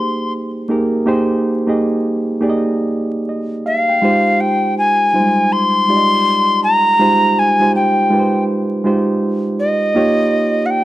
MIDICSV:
0, 0, Header, 1, 3, 480
1, 0, Start_track
1, 0, Key_signature, -4, "minor"
1, 0, Tempo, 740741
1, 687, Time_signature, 4, 2, 24, 8
1, 7024, End_track
2, 0, Start_track
2, 0, Title_t, "Recorder"
2, 0, Program_c, 0, 74
2, 0, Note_on_c, 0, 84, 101
2, 214, Note_off_c, 0, 84, 0
2, 2374, Note_on_c, 0, 77, 89
2, 2854, Note_on_c, 0, 79, 91
2, 2864, Note_off_c, 0, 77, 0
2, 3091, Note_off_c, 0, 79, 0
2, 3099, Note_on_c, 0, 80, 93
2, 3579, Note_on_c, 0, 84, 119
2, 3589, Note_off_c, 0, 80, 0
2, 4293, Note_off_c, 0, 84, 0
2, 4301, Note_on_c, 0, 82, 111
2, 4789, Note_on_c, 0, 80, 93
2, 4798, Note_off_c, 0, 82, 0
2, 5018, Note_off_c, 0, 80, 0
2, 5025, Note_on_c, 0, 79, 79
2, 5470, Note_off_c, 0, 79, 0
2, 6217, Note_on_c, 0, 75, 101
2, 6907, Note_on_c, 0, 78, 68
2, 6916, Note_off_c, 0, 75, 0
2, 6935, Note_on_c, 0, 79, 95
2, 6945, Note_off_c, 0, 78, 0
2, 7024, Note_off_c, 0, 79, 0
2, 7024, End_track
3, 0, Start_track
3, 0, Title_t, "Reed electric piano"
3, 0, Program_c, 1, 4
3, 0, Control_c, 1, 64, 127
3, 0, Note_on_c, 1, 58, 88
3, 0, Note_on_c, 1, 63, 76
3, 0, Note_on_c, 1, 67, 81
3, 0, Note_on_c, 1, 68, 80
3, 0, Note_on_c, 1, 72, 97
3, 317, Note_off_c, 1, 58, 0
3, 319, Note_off_c, 1, 63, 0
3, 321, Note_off_c, 1, 67, 0
3, 323, Note_off_c, 1, 68, 0
3, 325, Note_off_c, 1, 72, 0
3, 446, Note_on_c, 1, 58, 90
3, 449, Note_on_c, 1, 63, 79
3, 452, Note_on_c, 1, 67, 75
3, 455, Note_on_c, 1, 68, 72
3, 461, Note_on_c, 1, 70, 98
3, 654, Note_off_c, 1, 58, 0
3, 655, Note_off_c, 1, 63, 0
3, 657, Note_off_c, 1, 67, 0
3, 659, Note_off_c, 1, 68, 0
3, 661, Note_off_c, 1, 70, 0
3, 687, Note_on_c, 1, 58, 104
3, 692, Note_on_c, 1, 63, 96
3, 694, Control_c, 1, 64, 0
3, 694, Note_on_c, 1, 67, 102
3, 699, Note_on_c, 1, 68, 88
3, 702, Note_on_c, 1, 72, 120
3, 811, Control_c, 1, 64, 127
3, 996, Note_off_c, 1, 58, 0
3, 998, Note_off_c, 1, 63, 0
3, 999, Note_off_c, 1, 67, 0
3, 1002, Note_off_c, 1, 68, 0
3, 1003, Note_off_c, 1, 72, 0
3, 1081, Note_on_c, 1, 58, 80
3, 1085, Note_on_c, 1, 63, 70
3, 1088, Note_on_c, 1, 67, 69
3, 1094, Note_on_c, 1, 68, 78
3, 1098, Note_on_c, 1, 75, 86
3, 1451, Note_off_c, 1, 58, 0
3, 1453, Note_off_c, 1, 63, 0
3, 1455, Note_off_c, 1, 67, 0
3, 1458, Note_off_c, 1, 68, 0
3, 1459, Note_off_c, 1, 75, 0
3, 1560, Note_on_c, 1, 58, 88
3, 1561, Note_on_c, 1, 63, 82
3, 1566, Note_on_c, 1, 67, 78
3, 1570, Note_on_c, 1, 68, 79
3, 1575, Note_on_c, 1, 74, 81
3, 1598, Note_off_c, 1, 74, 0
3, 1617, Note_on_c, 1, 75, 100
3, 2124, Note_off_c, 1, 75, 0
3, 2132, Note_on_c, 1, 75, 59
3, 2329, Note_off_c, 1, 58, 0
3, 2329, Note_off_c, 1, 63, 0
3, 2332, Note_off_c, 1, 67, 0
3, 2334, Note_off_c, 1, 68, 0
3, 2358, Note_off_c, 1, 75, 0
3, 2371, Note_on_c, 1, 77, 77
3, 2512, Note_off_c, 1, 77, 0
3, 2523, Note_on_c, 1, 79, 59
3, 2604, Note_on_c, 1, 56, 99
3, 2610, Note_on_c, 1, 63, 83
3, 2614, Control_c, 1, 64, 0
3, 2615, Note_on_c, 1, 65, 89
3, 2618, Note_on_c, 1, 67, 81
3, 2621, Note_on_c, 1, 72, 109
3, 2724, Control_c, 1, 64, 127
3, 2748, Note_off_c, 1, 79, 0
3, 3223, Note_off_c, 1, 56, 0
3, 3226, Note_off_c, 1, 63, 0
3, 3229, Note_off_c, 1, 65, 0
3, 3230, Note_off_c, 1, 67, 0
3, 3232, Note_off_c, 1, 72, 0
3, 3326, Note_on_c, 1, 55, 70
3, 3332, Note_on_c, 1, 63, 68
3, 3334, Note_on_c, 1, 65, 64
3, 3342, Note_on_c, 1, 72, 73
3, 3368, Note_on_c, 1, 56, 70
3, 3744, Note_off_c, 1, 63, 0
3, 3746, Note_off_c, 1, 65, 0
3, 3747, Note_off_c, 1, 55, 0
3, 3750, Note_off_c, 1, 72, 0
3, 3762, Note_off_c, 1, 56, 0
3, 3810, Note_on_c, 1, 56, 61
3, 3814, Note_on_c, 1, 63, 62
3, 3817, Note_on_c, 1, 65, 64
3, 3822, Note_on_c, 1, 67, 61
3, 3825, Note_on_c, 1, 74, 59
3, 3867, Note_on_c, 1, 75, 73
3, 3869, Note_off_c, 1, 74, 0
3, 4426, Note_off_c, 1, 56, 0
3, 4428, Note_off_c, 1, 63, 0
3, 4430, Note_off_c, 1, 65, 0
3, 4432, Note_off_c, 1, 67, 0
3, 4455, Note_off_c, 1, 75, 0
3, 4532, Note_on_c, 1, 56, 97
3, 4536, Note_on_c, 1, 63, 98
3, 4539, Note_on_c, 1, 65, 88
3, 4541, Note_on_c, 1, 67, 88
3, 4545, Note_on_c, 1, 72, 114
3, 4839, Note_off_c, 1, 56, 0
3, 4840, Note_off_c, 1, 63, 0
3, 4842, Note_off_c, 1, 65, 0
3, 4843, Note_off_c, 1, 67, 0
3, 4845, Note_off_c, 1, 72, 0
3, 4923, Note_on_c, 1, 56, 76
3, 4927, Note_on_c, 1, 63, 66
3, 4930, Note_on_c, 1, 65, 68
3, 4934, Note_on_c, 1, 67, 71
3, 4937, Note_on_c, 1, 72, 83
3, 5201, Note_off_c, 1, 56, 0
3, 5204, Note_off_c, 1, 63, 0
3, 5205, Note_off_c, 1, 65, 0
3, 5207, Note_off_c, 1, 67, 0
3, 5208, Note_off_c, 1, 72, 0
3, 5251, Note_on_c, 1, 56, 80
3, 5253, Note_on_c, 1, 63, 65
3, 5259, Note_on_c, 1, 65, 62
3, 5261, Note_on_c, 1, 67, 70
3, 5267, Note_on_c, 1, 71, 68
3, 5309, Note_on_c, 1, 72, 82
3, 5310, Note_off_c, 1, 71, 0
3, 5664, Note_off_c, 1, 56, 0
3, 5665, Note_off_c, 1, 63, 0
3, 5668, Note_off_c, 1, 65, 0
3, 5669, Note_off_c, 1, 67, 0
3, 5693, Note_off_c, 1, 72, 0
3, 5729, Note_on_c, 1, 56, 93
3, 5735, Note_on_c, 1, 63, 75
3, 5738, Note_on_c, 1, 65, 78
3, 5742, Note_on_c, 1, 67, 84
3, 5746, Note_on_c, 1, 72, 89
3, 6346, Note_off_c, 1, 56, 0
3, 6349, Note_off_c, 1, 63, 0
3, 6350, Note_off_c, 1, 65, 0
3, 6352, Note_off_c, 1, 67, 0
3, 6354, Note_off_c, 1, 72, 0
3, 6446, Note_on_c, 1, 58, 105
3, 6452, Note_on_c, 1, 63, 88
3, 6453, Note_on_c, 1, 65, 95
3, 6455, Control_c, 1, 64, 0
3, 6456, Note_on_c, 1, 67, 96
3, 6461, Note_on_c, 1, 73, 107
3, 6552, Control_c, 1, 64, 127
3, 7024, Note_off_c, 1, 58, 0
3, 7024, Note_off_c, 1, 63, 0
3, 7024, Note_off_c, 1, 65, 0
3, 7024, Note_off_c, 1, 67, 0
3, 7024, Note_off_c, 1, 73, 0
3, 7024, End_track
0, 0, End_of_file